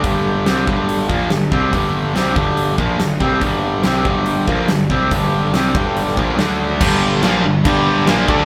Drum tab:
CC |----------------|----------------|----------------|----------------|
HH |o---o---o---o---|o---o---o---o---|o---o---o---o---|o---o---o---o---|
SD |----o-------o---|----o-------o---|----o-------o---|----o----o--o---|
BD |o-----o---o---o-|o-----o---o---o-|o-----o---o---o-|o-----o---o-----|

CC |x---x---x---x---|
HH |----------------|
SD |----o-------o---|
BD |o-------o-----o-|